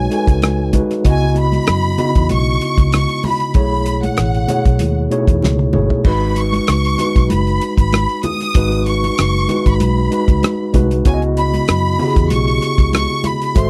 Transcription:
Already playing: tine electric piano G#3 D#4 F#4 B4 C#5, violin section G#5
0.10 tine electric piano G#3 D#4 F#4 A4, closed hi-hat, muted conga
0.19 tine electric piano B4
0.27 fingered electric bass C#2, kick, closed hi-hat
0.42 cross-stick, closed hi-hat, high conga
0.73 tine electric piano G#3 D#4 F#4 B4, kick, closed hi-hat, muted conga, high conga, low conga
0.91 cross-stick, closed hi-hat
1.04 fingered electric bass C#2, tine electric piano C#3 B3 E4 F#4 D#5, kick, closed hi-hat
1.09 violin section G#5
1.35 closed hi-hat, muted conga
1.40 violin section B5
1.52 closed hi-hat, high conga
1.67 fingered electric bass F#2, cross-stick, closed hi-hat
1.98 tine electric piano C#3 B3 D#4 F#4 D#5, closed hi-hat, muted conga, low conga
2.05 tine electric piano E4
2.15 fingered electric bass E2, kick, closed hi-hat
2.29 fingered electric bass B1, violin section C#6, closed hi-hat, high conga
2.61 closed hi-hat
2.78 fingered electric bass C#2, kick, closed hi-hat
2.92 violin section C#6, cross-stick, closed hi-hat, muted conga, high conga
3.09 closed hi-hat
3.23 violin section B5, open hi-hat, muted conga, high conga, low conga
3.40 closed hi-hat
3.53 fingered electric bass B1, tine electric piano B2 A3 E4 G#4 C#5, violin section B5, kick, closed hi-hat, muted conga
3.86 closed hi-hat, muted conga
4.03 violin section F#5, closed hi-hat, high conga
4.17 fingered electric bass A1, cross-stick, closed hi-hat, muted conga
4.34 closed hi-hat
4.48 tine electric piano B2 A3 E4 G#4 C#5, closed hi-hat, muted conga, low conga
4.65 fingered electric bass B1, kick, closed hi-hat
4.79 fingered electric bass D#2, closed hi-hat, muted conga, high conga
5.10 tine electric piano B2 A3 D#4 G#4 C#5, closed hi-hat
5.18 tine electric piano E4
5.27 fingered electric bass E2, kick, closed hi-hat
5.42 fingered electric bass C#2, snare, high conga
5.59 high tom
5.72 fingered electric bass G1, tine electric piano B2 A3 E4 G#4 C#5, mid tom, high conga, low conga
5.90 floor tom
6.04 fingered electric bass G#1, tine electric piano G#3 D#4 F#4 B4, violin section B5, kick, crash, muted conga
6.36 violin section C#6, closed hi-hat, muted conga
6.53 closed hi-hat, high conga
6.67 fingered electric bass C#2, cross-stick, closed hi-hat
6.85 closed hi-hat
6.98 tine electric piano G#3 D#4 F#4 B4, closed hi-hat, low conga
7.16 fingered electric bass B1, kick, closed hi-hat
7.30 fingered electric bass F#1, violin section B5, closed hi-hat, muted conga, high conga
7.47 closed hi-hat
7.61 closed hi-hat, muted conga
7.78 fingered electric bass G#1, violin section B5, kick, closed hi-hat
7.93 cross-stick, closed hi-hat, muted conga, high conga
8.09 closed hi-hat
8.23 violin section D#6, closed hi-hat, muted conga, high conga, low conga
8.41 cross-stick, closed hi-hat
8.54 fingered electric bass G#1, tine electric piano G#3 D#4 F#4 B4, kick, closed hi-hat, muted conga
8.72 closed hi-hat
8.86 violin section C#6, closed hi-hat, muted conga
9.04 closed hi-hat, high conga
9.18 fingered electric bass F#1, cross-stick, closed hi-hat
9.48 tine electric piano G#3 D#4 F#4 B4, closed hi-hat, muted conga, low conga
9.66 fingered electric bass G#1, violin section B5, kick, closed hi-hat
9.80 fingered electric bass B1, closed hi-hat, high conga
10.11 tine electric piano G#3 D#4 F#4 B4, closed hi-hat, muted conga
10.28 fingered electric bass C#2, kick, closed hi-hat
10.43 cross-stick, closed hi-hat, high conga
10.73 fingered electric bass C2, tine electric piano G#3 D#4 F#4 B4, kick, closed hi-hat, muted conga, high conga, low conga
10.91 closed hi-hat
11.05 fingered electric bass C#2, tine electric piano C#3 B3 E4 F#4 C#5, violin section G#5, kick, closed hi-hat, muted conga
11.14 tine electric piano D#5
11.22 closed hi-hat
11.37 violin section B5, closed hi-hat
11.54 closed hi-hat, high conga
11.68 fingered electric bass F#2, cross-stick, closed hi-hat
11.99 tine electric piano C#3 B3 E4 F#4 G4, open hi-hat, muted conga, low conga
12.07 tine electric piano G#4
12.16 fingered electric bass E2, kick, closed hi-hat
12.30 fingered electric bass B1, violin section C#6, closed hi-hat, high conga
12.48 closed hi-hat
12.62 closed hi-hat, muted conga
12.78 fingered electric bass C#2, kick, closed hi-hat
12.93 violin section C#6, cross-stick, closed hi-hat, high conga
13.24 violin section B5, closed hi-hat, muted conga, high conga, low conga
13.42 closed hi-hat
13.55 fingered electric bass G#1, tine electric piano G#3 F#4 A4 C5 E5, violin section C6, kick, closed hi-hat, muted conga

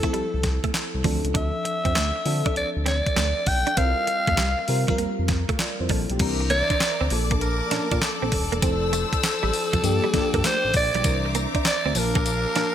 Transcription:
Already playing: fm electric piano F3 C4 E4 A4, alto saxophone A4
0.03 fm electric piano F3 C4 E4 A4, clean electric guitar A3, kick, closed hi-hat
0.13 analog synth bass C2, clean electric guitar G3, closed hi-hat
0.34 analog synth bass C2
0.43 muted clean electric guitar stroke, kick, snare, closed hi-hat
0.64 clean electric guitar A3, kick, closed hi-hat
0.74 snare, clap, closed hi-hat
0.94 analog synth bass C2
1.04 analog synth bass D2, fm electric piano E3 C4 D4 A4, clean electric guitar F3, kick, open hi-hat
1.11 fm electric piano F3
1.24 analog synth bass C#2, closed hi-hat
1.34 analog synth bass D2, clean electric guitar D4, alto saxophone E5, kick, closed hi-hat
1.65 muted clean electric guitar stroke, closed hi-hat
1.85 analog synth bass F2, clean electric guitar C4, kick, closed hi-hat
1.95 analog synth bass D2, clean electric guitar A3, snare, clap, closed hi-hat
2.16 muted clean electric guitar stroke
2.25 analog synth bass D3, fm electric piano F3 C4 D4 A4, open hi-hat
2.45 fm electric piano F3 C4 D4 A4, clean electric guitar D4, kick, closed hi-hat
2.56 analog synth bass D2, alto saxophone D5, closed hi-hat
2.77 analog synth bass D2
2.86 clean electric guitar C4, alto saxophone D5, snare, closed hi-hat
3.06 kick, closed hi-hat
3.16 analog synth bass D2, clean electric guitar A3, snare, clap, closed hi-hat
3.46 analog synth bass B1, alto saxophone G5, muted clean electric guitar stroke, kick, open hi-hat
3.67 clean electric guitar D4, closed hi-hat
3.77 analog synth bass C2, fm electric piano G3 C4 E4 A#4, clean electric guitar C4, alto saxophone F5, kick, closed hi-hat
3.84 fm electric piano F4
4.07 muted clean electric guitar stroke, closed hi-hat
4.27 analog synth bass F2, clean electric guitar A3, kick, closed hi-hat
4.37 analog synth bass C2, clean electric guitar G3, snare, clap, closed hi-hat
4.58 muted clean electric guitar stroke
4.68 analog synth bass C3, fm electric piano G3 C4 F4 A#4, open hi-hat
4.88 clean electric guitar F3, fm electric piano G3 C4 F4 A#4, kick, closed hi-hat
4.98 analog synth bass F2, clean electric guitar A#3, closed hi-hat
5.19 analog synth bass F2
5.28 muted clean electric guitar stroke, kick, snare, closed hi-hat
5.49 clean electric guitar A3, kick, closed hi-hat
5.59 fm electric piano F4 D5, snare, clap, closed hi-hat
5.80 analog synth bass F2, fm electric piano E4 C5
5.89 analog synth bass A#1, clean electric guitar G3, fm electric piano C4 A4, kick, open hi-hat
6.10 analog synth bass B1, fm electric piano A#3 G4, closed hi-hat
6.19 analog synth bass C2, fm electric piano E3 C4 D4 A#4, string section C5 E5 A#5 D6, kick, closed hi-hat, crash
6.40 muted clean electric guitar stroke
6.50 clean electric guitar A#3, alto saxophone D5, closed hi-hat
6.70 clean electric guitar D4, kick, closed hi-hat
6.80 snare, clap, closed hi-hat
7.01 analog synth bass D2, clean electric guitar C4
7.10 analog synth bass A#1, fm electric piano F3 A#3 D4 A4, string section A#3 D5 A5, muted clean electric guitar stroke, open hi-hat
7.31 clean electric guitar A#3, kick, closed hi-hat
7.41 alto saxophone A#4, muted clean electric guitar stroke, closed hi-hat
7.71 analog synth bass A#2, fm electric piano F3 A#3 C#4 A5, clean electric guitar D4, snare, closed hi-hat
7.79 fm electric piano D4
7.91 analog synth bass A#2, clean electric guitar D4, kick, closed hi-hat
8.02 alto saxophone A4, snare, clap, closed hi-hat
8.22 analog synth bass A#1, clean electric guitar C4
8.32 analog synth bass D#1, muted clean electric guitar stroke, kick, open hi-hat
8.52 analog synth bass E1, clean electric guitar A#3, closed hi-hat
8.62 analog synth bass F1, fm electric piano F3 C4 E4 A4, clean electric guitar C4, alto saxophone A4, string section C5 E6, kick, closed hi-hat, tambourine
8.93 clean electric guitar A3, closed hi-hat, tambourine
9.13 muted clean electric guitar stroke, kick, closed hi-hat
9.23 snare, clap, closed hi-hat, tambourine
9.43 analog synth bass A1, clean electric guitar G3
9.53 muted clean electric guitar stroke, open hi-hat, tambourine
9.73 analog synth bass C2, clean electric guitar F3, kick, closed hi-hat
9.83 analog synth bass G2, fm electric piano F3 A#3 D4 G4, string section A#3 G5 D6, closed hi-hat, tambourine
10.04 clean electric guitar G3
10.14 analog synth bass G2, fm electric piano F3 A#3 D4 F4, muted clean electric guitar stroke, kick, snare, closed hi-hat
10.21 fm electric piano G4
10.34 analog synth bass G2, clean electric guitar A#3, kick, closed hi-hat
10.44 clean electric guitar A3, alto saxophone C5, snare, clap, closed hi-hat, tambourine
10.65 analog synth bass A1
10.74 analog synth bass A#1, alto saxophone D5, muted clean electric guitar stroke, kick, open hi-hat, tambourine
10.95 analog synth bass B1, clean electric guitar G3, closed hi-hat
11.04 analog synth bass C2, fm electric piano E3 C4 D4 A#4, string section C5 E5 A#5, kick, closed hi-hat, tambourine
11.25 muted clean electric guitar stroke
11.35 clean electric guitar A#3, closed hi-hat, tambourine
11.55 clean electric guitar D4, kick, closed hi-hat
11.65 alto saxophone D5, snare, clap, closed hi-hat, tambourine
11.86 analog synth bass D2, clean electric guitar C4
11.95 analog synth bass A#1, fm electric piano F3 A#3 D4 A5, string section A#4 F5 A5, alto saxophone A#4, muted clean electric guitar stroke, open hi-hat, tambourine
12.15 clean electric guitar A#3, kick, closed hi-hat
12.26 muted clean electric guitar stroke, closed hi-hat, tambourine
12.56 analog synth bass A#2, fm electric piano F3 A#3 D4 A5, clean electric guitar D4, snare, closed hi-hat

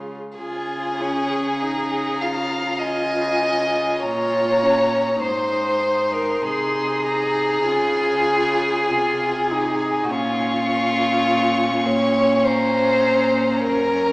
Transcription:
Already playing: cello C#3, viola G#3, violin F4
0.38 cello C#3, viola F4, violin G#4 G#5
1.00 viola C#4
1.62 viola D#4, violin A#5
2.22 viola F4, violin F5
2.79 violin D#5 G#5
4.00 cello A#2, viola F4, violin C#5 A#5
4.63 viola C#4
5.22 cello G#2, viola D#4, violin C5 C6
6.13 violin A#4
6.42 cello C3, violin G#4 C6
7.05 violin A#5
7.66 cello C#3, viola F4, violin G#5
8.90 cello C3, viola F4, violin G#5
9.51 viola D#4
10.04 violin F#4
10.10 cello A#2, viola C#4, violin F4 C#6
10.69 viola C#4
11.86 violin C#5
12.45 violin C5 A#5
13.62 cello F#2, violin A#4 A#5

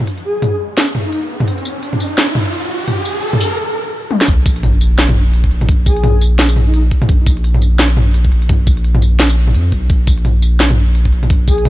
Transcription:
Already playing: riser
0.00 mid tom
0.07 closed hi-hat
0.18 closed hi-hat
0.25 soft synth lead G#4
0.42 closed hi-hat, mid tom
0.78 snare, closed hi-hat
0.88 closed hi-hat
0.95 mid tom
1.05 soft synth lead D#4
1.12 soft synth lead D#4, closed hi-hat
1.40 mid tom
1.48 closed hi-hat
1.58 closed hi-hat
1.65 tambourine
1.83 closed hi-hat
1.93 mid tom
2.00 tambourine
2.18 snare, closed hi-hat
2.28 closed hi-hat
2.35 mid tom
2.53 closed hi-hat
2.88 closed hi-hat, mid tom
2.98 closed hi-hat
3.05 tambourine
3.23 closed hi-hat
3.33 mid tom
3.41 tambourine
4.11 high tom
4.21 snare
4.28 sub bass A#1, kick, closed hi-hat, sub drop
4.46 kick, tambourine
4.56 closed hi-hat
4.63 closed hi-hat, mid tom
4.81 tambourine
4.99 snare, closed hi-hat
5.09 mid tom
5.34 closed hi-hat
5.44 kick
5.51 sub bass A#1, closed hi-hat
5.61 closed hi-hat, mid tom
5.69 sub bass A#1, kick, closed hi-hat
5.86 soft synth lead G#4, kick, tambourine
5.97 closed hi-hat
6.04 closed hi-hat, mid tom
6.21 tambourine
6.39 snare, closed hi-hat
6.49 tambourine
6.56 mid tom
6.66 soft synth lead D#4
6.74 soft synth lead D#4, closed hi-hat
6.91 kick, closed hi-hat
7.02 closed hi-hat, mid tom
7.09 sub bass A#1, kick, closed hi-hat
7.27 kick, tambourine
7.37 closed hi-hat
7.44 closed hi-hat
7.55 mid tom
7.62 tambourine
7.79 snare, closed hi-hat
7.97 mid tom
8.14 closed hi-hat
8.25 kick
8.32 sub bass A#1, closed hi-hat
8.42 closed hi-hat
8.49 sub bass A#1, kick, closed hi-hat, mid tom
8.67 kick, tambourine
8.77 closed hi-hat
8.84 closed hi-hat
8.95 mid tom
9.02 tambourine
9.20 snare, closed hi-hat
9.30 tambourine
9.47 mid tom
9.55 sub bass F2, closed hi-hat
9.72 sub bass B1, kick, closed hi-hat
9.90 sub bass A#1, kick, closed hi-hat
10.07 kick, tambourine
10.18 closed hi-hat
10.25 closed hi-hat, mid tom
10.42 tambourine
10.60 snare, closed hi-hat
10.70 mid tom
10.95 closed hi-hat
11.05 kick
11.13 sub bass A#1, closed hi-hat
11.23 closed hi-hat, mid tom
11.30 sub bass A#1, kick, closed hi-hat
11.47 soft synth lead G#4, kick, tambourine
11.58 closed hi-hat
11.65 closed hi-hat, mid tom

